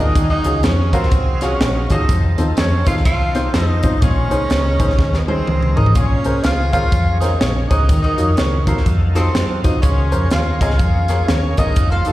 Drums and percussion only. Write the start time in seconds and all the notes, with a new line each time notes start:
0.15 kick, closed hi-hat
0.44 closed hi-hat
0.63 snare, closed hi-hat
0.93 kick, closed hi-hat
1.03 snare
1.11 kick, closed hi-hat
1.41 snare, closed hi-hat
1.61 snare, closed hi-hat
1.90 kick, closed hi-hat
2.09 kick, closed hi-hat
2.38 closed hi-hat
2.57 snare, closed hi-hat
2.86 kick, closed hi-hat
2.97 snare
3.05 kick, closed hi-hat
3.35 snare, closed hi-hat
3.54 snare, closed hi-hat
3.83 kick, closed hi-hat
4.02 kick, closed hi-hat
4.31 closed hi-hat
4.50 snare, closed hi-hat
4.80 kick, closed hi-hat
4.90 snare
4.99 kick, snare
5.13 snare
5.28 high tom
5.47 mid tom
5.63 mid tom
5.77 floor tom
5.86 floor tom
5.95 kick, closed hi-hat
6.24 closed hi-hat
6.44 snare, closed hi-hat
6.73 kick, closed hi-hat
6.92 kick, closed hi-hat
7.21 snare, closed hi-hat
7.41 snare, closed hi-hat
7.71 kick, closed hi-hat
7.89 kick, closed hi-hat
8.18 closed hi-hat
8.37 snare, closed hi-hat
8.67 kick, closed hi-hat
8.77 snare
8.86 kick, closed hi-hat
9.16 snare, closed hi-hat
9.35 snare, closed hi-hat
9.64 kick, closed hi-hat
9.83 kick, closed hi-hat
10.12 closed hi-hat
10.31 snare, closed hi-hat
10.61 kick, closed hi-hat
10.70 snare
10.79 kick, closed hi-hat
11.08 snare, closed hi-hat
11.28 snare, closed hi-hat
11.57 kick, closed hi-hat
11.76 kick, closed hi-hat
12.05 closed hi-hat